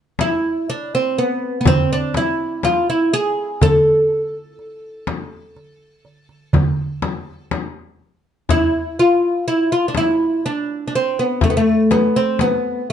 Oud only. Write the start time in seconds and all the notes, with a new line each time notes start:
0.21 E4
0.70 D4
0.95 C4
1.18 B3
1.61 B3
1.67 C4
1.93 D4
2.17 E4
2.65 F4
2.90 E4
3.14 G#4
3.63 A4
8.50 E4
8.99 F4
9.48 E4
9.72 F4
9.88 D4
9.97 E4
10.46 D4
10.88 D4
10.95 C4
11.19 B3
11.44 A3
11.50 B3
11.57 A3
11.91 B3
12.16 C4
12.41 B3